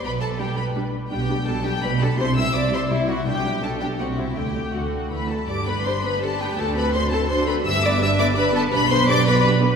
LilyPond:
<<
  \new Staff \with { instrumentName = "Violin section" } { \time 3/4 \key g \major \tempo 4 = 167 b''8 a''8 g''8 b''8 r4 | g''4 a''8 g''8 b''8 a''8 | c'''8 e'''8 d'''8 c'''8 e''8 fis''8 | g''4 a''8 g''8 fis''8 e''8 |
g''4 fis''4 b''8 a''8 | d'''8 b''8 c'''8 b''8 a''8 g''8 | a''8 b''8 c'''8 a''8 c'''8 b''8 | e'''8 d'''8 e'''8 d'''8 b''8 a''8 |
b''8 c'''8 d'''8 b''8 r4 | }
  \new Staff \with { instrumentName = "Violin section" } { \time 3/4 \key g \major b'8 a'8 g'8 b'8 r4 | g'4 a'8 g'8 b'8 a'8 | c''8 e''8 d''8 c''8 e'8 fis'8 | g'4 a'8 g'8 fis'8 e'8 |
g'4 fis'4 b'8 a'8 | d''8 b'8 c''8 b'8 a'8 g'8 | a'8 b'8 c''8 a'8 c''8 b'8 | e''8 d''8 e''8 d''8 b'8 a'8 |
b'8 c''8 d''8 b'8 r4 | }
  \new Staff \with { instrumentName = "Viola section" } { \time 3/4 \key g \major r4 <g d'>4 <g d'>4 | <g d'>8 <g d'>8 <g d'>8 <g d'>8 <g d'>8 <g d'>8 | <g e'>8 <g e'>8 <g e'>8 <g e'>8 <g e'>8 <g e'>8 | <g d'>8 <g d'>8 <g d'>8 <g d'>8 <g c'>8 <g c'>8 |
<d a>8 <d a>8 d4 e8 d8 | <d' g'>8 <b b'>8 <d' g'>8 <b b'>8 <d' g'>8 <b b'>8 | <d' fis'>8 <c' a'>8 <d' fis'>8 <c' a'>8 <d' fis'>8 <c' a'>8 | <d' g'>8 <b b'>8 <d' g'>8 <b b'>8 <d' g'>8 <b b'>8 |
<d' g'>8 <b b'>8 <d' g'>8 <b b'>8 <d' g'>8 <b b'>8 | }
  \new Staff \with { instrumentName = "Cello section" } { \clef bass \time 3/4 \key g \major b,4 r2 | b,4 b,4 b,4 | c4 c4 c4 | b,4 b,4 c4 |
d,4 d,4 d,4 | g,2. | d,2. | g,2. |
b,2. | }
  \new Staff \with { instrumentName = "Double bass section" } { \clef bass \time 3/4 \key g \major b,,4 r2 | b,,4 b,,4 b,,4 | c,4 c,4 c,4 | b,,4 b,,4 c,4 |
d,4 d,4 d,4 | g,,2. | d,2. | g,,2. |
b,,2. | }
>>